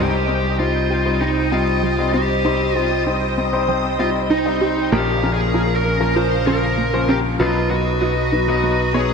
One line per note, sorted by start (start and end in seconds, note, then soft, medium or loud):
0.00 4.89 C2 medium
0.00 0.10 G3 medium
0.00 0.15 G3 medium
0.00 0.15 C4 medium
0.00 0.15 D#4 medium
0.00 0.55 G4 loud
0.00 0.15 C5 loud
0.00 4.88 C5 medium
0.00 4.88 D#5 medium
0.00 4.88 G5 medium
0.00 4.88 D#6 medium
0.28 0.56 G3 medium
0.28 0.58 C4 medium
0.28 0.56 C4 medium
0.28 0.56 D#4 medium
0.28 0.56 C5 medium
0.59 0.87 G3 medium
0.59 0.87 C4 medium
0.59 0.87 D#4 medium
0.59 0.89 D#4 medium
0.59 1.23 F4 medium
0.59 0.87 C5 medium
0.90 1.03 G3 medium
0.90 1.03 C4 medium
0.90 1.03 D#4 medium
0.90 1.20 G4 medium
0.90 1.03 C5 medium
1.06 1.17 G3 medium
1.06 1.17 C4 medium
1.06 1.17 D#4 medium
1.06 1.17 C5 loud
1.21 1.39 G3 medium
1.21 1.39 C4 medium
1.21 1.53 D#4 medium
1.21 1.39 D#4 medium
1.21 1.42 D#4 medium
1.21 1.39 C5 medium
1.52 1.80 G3 medium
1.52 1.80 C4 medium
1.52 1.73 C4 medium
1.52 1.80 D#4 medium
1.52 2.13 F4 medium
1.52 1.80 D#5 loud
1.83 2.13 G3 loud
1.99 2.10 G3 medium
1.99 2.10 C4 medium
1.99 2.10 D#4 medium
1.99 2.10 D#5 medium
2.13 2.41 G3 medium
2.13 2.41 C4 medium
2.13 2.27 C4 loud
2.13 2.41 D#4 medium
2.13 2.76 G4 medium
2.13 2.41 C5 medium
2.45 2.62 G3 medium
2.45 2.62 C4 medium
2.45 2.62 D#4 medium
2.45 2.74 D#4 medium
2.45 2.62 C5 loud
2.76 3.03 G3 medium
2.76 3.03 C4 medium
2.76 3.03 D#4 medium
2.76 3.02 F4 medium
2.76 3.05 G4 medium
2.76 3.03 C5 medium
3.07 3.34 G3 medium
3.07 3.34 C4 medium
3.07 3.34 D#4 medium
3.07 3.36 D#4 medium
3.07 3.34 C5 medium
3.38 3.51 G3 medium
3.38 3.51 C4 medium
3.38 3.67 C4 medium
3.38 3.51 D#4 medium
3.38 3.51 C5 medium
3.53 3.65 G3 medium
3.53 3.65 C4 medium
3.53 3.65 D#4 medium
3.53 3.65 C5 loud
3.68 3.86 G3 medium
3.68 3.90 G3 medium
3.68 3.86 C4 medium
3.68 3.86 D#4 medium
3.68 3.86 C5 medium
3.99 4.27 G3 medium
3.99 4.27 C4 medium
3.99 4.12 C4 medium
3.99 4.27 D#4 medium
3.99 4.08 F4 medium
3.99 4.27 D#5 loud
4.30 4.88 D#4 medium
4.30 4.60 D#4 loud
4.46 4.58 G3 medium
4.46 4.58 C4 medium
4.46 4.58 D#4 medium
4.46 4.58 D#5 medium
4.61 4.89 G3 medium
4.61 4.89 C4 medium
4.61 4.89 D#4 medium
4.61 4.74 G4 loud
4.61 4.89 C5 medium
4.92 7.37 A#1 medium
4.92 5.10 F3 medium
4.92 5.10 A#3 medium
4.92 5.05 A#3 loud
4.92 5.10 C#4 medium
4.92 7.37 C#4 medium
4.92 5.33 G4 medium
4.92 5.10 A#4 loud
4.92 7.37 A#4 medium
4.92 7.37 F5 medium
4.92 7.37 A#5 medium
5.23 5.51 F3 medium
5.23 5.51 A#3 medium
5.23 5.51 C#4 medium
5.23 5.53 C#4 medium
5.23 5.51 A#4 medium
5.34 5.76 G#4 medium
5.54 5.81 F3 medium
5.54 5.81 A#3 medium
5.54 5.81 C#4 medium
5.54 5.84 F4 medium
5.54 5.81 A#4 medium
5.75 6.13 A#4 medium
5.85 5.98 F3 medium
5.85 5.98 A#3 medium
5.85 5.98 C#4 medium
5.85 6.15 A#4 medium
5.85 5.98 A#4 medium
6.01 6.12 F3 medium
6.01 6.12 A#3 medium
6.01 6.12 C#4 medium
6.01 6.12 A#4 loud
6.16 6.33 F3 medium
6.16 6.33 A#3 medium
6.16 6.33 C#4 medium
6.16 6.37 F4 medium
6.16 6.33 A#4 medium
6.16 6.47 C5 medium
6.47 6.75 F3 medium
6.47 6.75 A#3 medium
6.47 6.68 C#4 medium
6.47 6.75 C#4 medium
6.47 7.11 A#4 medium
6.47 6.75 C5 loud
6.78 7.07 A#3 loud
6.93 7.05 F3 medium
6.93 7.05 A#3 medium
6.93 7.05 C#4 medium
6.93 7.05 C5 loud
7.09 7.36 F3 medium
7.09 7.36 A#3 medium
7.09 7.36 C#4 medium
7.09 7.22 C#4 loud
7.09 7.17 G4 medium
7.09 7.36 A#4 medium
7.40 9.13 B1 medium
7.40 7.57 F#3 medium
7.40 7.57 B3 medium
7.40 7.57 D#4 medium
7.40 7.69 F4 medium
7.40 7.69 F#4 medium
7.40 7.57 B4 loud
7.40 9.13 B4 medium
7.40 9.13 D#5 medium
7.40 9.13 D#6 medium
7.71 7.98 F#3 medium
7.71 7.98 B3 medium
7.71 7.98 D#4 medium
7.71 8.94 F#4 medium
7.71 7.98 B4 medium
7.71 8.00 B4 medium
8.02 8.29 F#3 medium
8.02 8.29 B3 medium
8.02 8.29 D#4 medium
8.02 8.31 F#4 medium
8.02 8.29 B4 medium
8.32 8.46 F#3 medium
8.32 8.46 B3 medium
8.32 8.62 D#4 medium
8.32 8.46 D#4 medium
8.32 8.46 B4 medium
8.48 8.60 F#3 medium
8.48 8.60 B3 medium
8.48 8.60 D#4 medium
8.48 8.60 B4 loud
8.63 8.81 F#3 medium
8.63 8.85 B3 medium
8.63 8.81 B3 medium
8.63 8.81 D#4 medium
8.63 8.81 B4 medium
8.94 9.13 F#3 medium
8.94 9.07 B3 medium
8.94 9.13 B3 medium
8.94 9.13 D#4 medium
8.94 9.13 G#4 medium
8.94 9.13 C#5 loud